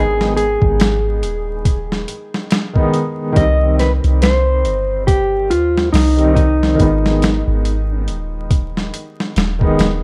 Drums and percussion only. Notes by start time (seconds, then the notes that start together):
0.21 snare
0.37 closed hi-hat
0.62 kick
0.80 snare, closed hi-hat
1.23 closed hi-hat
1.65 kick, closed hi-hat
1.92 snare
2.08 closed hi-hat
2.34 snare
2.51 snare, closed hi-hat
2.76 kick
2.94 closed hi-hat
3.36 kick, closed hi-hat
3.79 snare, closed hi-hat
4.04 closed hi-hat
4.22 snare, closed hi-hat
4.65 closed hi-hat
5.08 kick, closed hi-hat
5.51 closed hi-hat
5.78 snare
5.94 snare, open hi-hat
6.19 closed hi-hat
6.36 kick, closed hi-hat
6.63 snare
6.79 kick, closed hi-hat
7.06 snare
7.22 snare, closed hi-hat
7.65 closed hi-hat
8.08 closed hi-hat
8.51 kick, closed hi-hat
8.77 snare
8.94 closed hi-hat
9.20 snare
9.36 snare, closed hi-hat
9.61 kick
9.79 snare, closed hi-hat